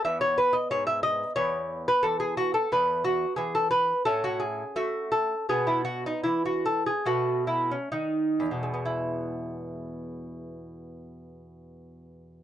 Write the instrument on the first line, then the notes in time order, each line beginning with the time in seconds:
lute
0.05 E2 B3 E5
0.21 C#5
0.38 B4
0.53 D#5
0.71 G#2 C#5
0.87 E5
1.03 D#5
1.36 E2 B3 C#5
1.88 B4
2.03 E3 A4
2.20 G#4
2.37 F#4
2.54 A4
2.72 E2 B3 B4
3.04 F#4
3.36 E3 G#4
3.55 A4
3.71 B4
4.05 A2 C#4 A4
4.24 F#4
4.40 G#4
4.76 A3 F#4
5.12 A4
5.49 B2 B3 G#4
5.67 E4
5.85 F#4
6.06 D#4
6.24 E3 E4
6.45 F#4
6.66 A4
6.86 G#4
7.06 B2 A3 F#4
7.47 E4
7.71 C#4
7.92 D#3 D#4
8.40 E2
8.51 B2
8.63 G#3
8.74 B3
8.85 E4